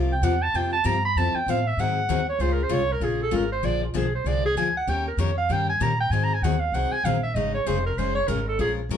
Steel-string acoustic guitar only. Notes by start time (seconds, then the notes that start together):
Already playing: C3 F3 A#3 F4 G4
0.23 C3 F3 A#3 F4 G4
0.54 C3 F3 A#3 F4 G4
0.84 C3 F3 A#3 F4 G4
1.17 F3 C4 E4 A4
1.48 F3 C4 E4 A4
1.79 D#3 F#3 C4 D#4 G#4
2.09 D#3 F#3 C4 D#4 G#4
2.40 C#3 G#3 C#4 F4 G#4
2.69 C#3 G#3 C#4 F4 G#4
3.01 C#3 G#3 C#4 F4 G#4
3.31 C#3 G#3 C#4 F4 G#4
3.63 D3 F3 A#3 D4 G#4
3.94 D3 F3 A#3 D4 G#4
4.26 D3 F3 A#3 D4 G#4
4.57 D3 F3 A#3 D4 G#4
4.87 D#3 A#3 C#4 G4 A#4
5.18 D#3 A#3 C#4 G4 A#4
5.49 D#3 A#3 C#4 G4 A#4
5.80 D#3 A#3 C#4 G4 A#4
6.12 D#3 F#3 C4 D#4 G#4
6.44 D#3 F#3 C4 D#4 G#4
6.74 D#3 F#3 C4 D#4 G#4
7.05 D#3 F#3 C4 D#4 G#4
7.36 C#3 G#3 C#4 D#4 G#4
7.66 C#3 G#3 C#4 D#4 G#4
7.98 C#3 G#3 C#4 D#4 G#4
8.28 C#3 G#3 C#4 D#4 G#4
8.59 F3 G#3 C#4 F4 A#4
8.91 F3 G#3 C#4 F4 A#4